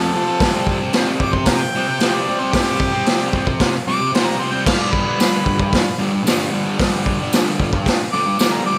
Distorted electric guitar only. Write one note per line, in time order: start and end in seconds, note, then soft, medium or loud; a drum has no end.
0.00 0.11 F2 medium
0.00 0.13 C3 loud
0.00 0.14 F3 loud
0.12 0.38 F2 medium
0.12 0.28 C3 medium
0.12 0.25 F3 medium
0.26 0.39 C3 medium
0.26 0.39 F3 medium
0.40 0.93 C3 loud
0.40 0.55 G3 medium
0.40 0.52 C4 loud
0.52 0.83 G3 medium
0.52 0.80 C4 medium
0.80 0.95 G3 medium
0.80 0.95 C4 medium
0.93 1.20 C3 loud
0.93 1.22 G3 medium
0.93 1.23 C4 loud
1.21 1.61 C3 medium
1.21 1.36 G3 medium
1.21 1.35 C4 medium
1.36 muted distorted electric guitar stroke medium
1.75 1.99 C3 medium
1.75 1.88 G3 medium
1.75 1.86 C4 medium
1.88 muted distorted electric guitar stroke medium
2.00 2.25 C3 loud
2.00 2.28 G3 loud
2.00 2.28 C4 medium
2.27 2.52 C3 medium
2.27 2.42 G3 medium
2.27 2.39 C4 medium
2.40 2.54 G3 medium
2.40 2.55 C4 medium
2.53 2.93 C3 medium
2.53 2.69 G3 loud
2.53 2.66 C4 loud
2.67 2.95 G3 medium
2.67 2.91 C4 medium
2.92 3.07 G3 medium
2.92 3.07 C4 medium
3.06 3.33 C3 loud
3.06 3.35 G3 medium
3.06 3.35 C4 loud
3.34 3.74 C3 medium
3.34 3.48 G3 medium
3.34 3.47 C4 medium
3.48 muted distorted electric guitar stroke medium
3.87 4.11 C3 medium
3.87 4.01 G3 medium
3.87 3.99 C4 medium
4.00 muted distorted electric guitar stroke medium
4.13 4.37 C3 medium
4.13 4.40 G3 loud
4.13 4.40 C4 loud
4.38 4.64 C3 medium
4.38 4.55 G3 medium
4.38 4.51 C4 medium
4.53 4.68 G3 medium
4.53 4.65 C4 medium
4.66 5.18 G2 loud
4.66 4.80 D3 loud
4.66 4.78 G3 loud
4.78 5.07 D3 medium
4.78 5.05 G3 medium
5.05 5.19 D3 medium
5.05 5.21 G3 medium
5.18 5.44 G2 medium
5.18 5.45 D3 loud
5.18 5.47 G3 loud
5.44 5.86 G2 medium
5.44 5.58 D3 medium
5.44 5.58 G3 medium
5.58 muted distorted electric guitar stroke medium
5.98 6.23 G2 medium
5.98 6.12 D3 medium
5.98 6.11 G3 medium
6.12 muted distorted electric guitar stroke medium
6.24 6.51 G2 medium
6.24 6.52 D3 loud
6.24 6.53 G3 loud
6.52 6.77 G2 medium
6.52 6.67 D3 medium
6.52 6.64 G3 medium
6.65 6.78 D3 medium
6.65 6.80 G3 medium
6.78 7.19 G2 medium
6.78 6.94 D3 loud
6.78 6.92 G3 loud
6.92 7.22 D3 medium
6.92 7.20 G3 medium
7.20 7.34 D3 medium
7.20 7.36 G3 medium
7.34 7.59 G2 medium
7.34 7.61 D3 loud
7.34 7.63 G3 loud
7.60 8.00 G2 medium
7.60 7.73 D3 medium
7.60 7.74 G3 medium
7.74 muted distorted electric guitar stroke soft
8.13 8.37 G2 medium
8.13 8.26 D3 medium
8.13 8.26 G3 medium
8.26 muted distorted electric guitar stroke medium
8.39 8.65 G2 medium
8.39 8.66 D3 loud
8.39 8.68 G3 loud
8.66 8.78 G2 medium
8.66 8.78 D3 medium
8.66 8.78 G3 medium